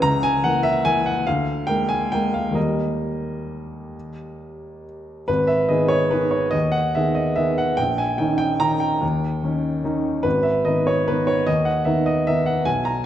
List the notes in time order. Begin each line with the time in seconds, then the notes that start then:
0.02 C#2 A#5
0.23 G#5
0.44 E3 A#3 A#4 F#5
0.63 E5
0.85 E3 A#3 A#4 G#5
1.06 F#5
1.27 D2 F5
1.67 G#3 A#3 A#4 G5
1.89 G#5
2.12 G#3 A#3 A#4 G5
2.34 F5
2.51 D#2 G3 A#3 D#5
2.55 A#4
5.28 G#1 B4
5.47 E5
5.69 D#3 B3 G#4 D#5
5.88 C#5
6.11 D#3 B3 G#4 B4
6.31 C#5
6.51 D#2 D#5
6.72 F#5
6.95 D#3 B3 G#4 E5
7.15 D#5
7.36 D#3 B3 G#4 E5
7.58 F#5
7.77 A#1 G5
7.98 G#5
8.18 D#3 C#4 D#4 G5
8.38 G5
8.60 D#3 C#4 D#4 A#5
8.80 G5
9.01 D#2
9.43 D#3 C#4 D#4
9.84 D#3 C#4 D#4
10.23 G#1 B4
10.43 E5
10.65 D#3 B3 D#4 D#5
10.87 C#5
11.08 D#3 B3 D#4 B4
11.27 C#5
11.47 D#2 D#5
11.65 F#5
11.85 D#3 B3 D#4 E5
12.06 D#5
12.27 D#3 B3 D#4 E5
12.46 F#5
12.65 B1 G#5
12.85 A#5